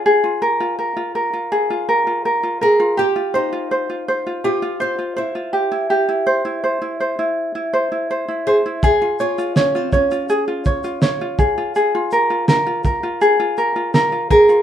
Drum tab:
SH |----------------|----------------|----------------|x-xxx-xxx-xxx-x-|
SD |----------------|----------------|----------------|----o-------o---|
BD |----------------|----------------|----------------|o-----o---o---o-|

SH |x-x-x-x-x-x-x-xx|
SD |----o-------o---|
BD |------o-------o-|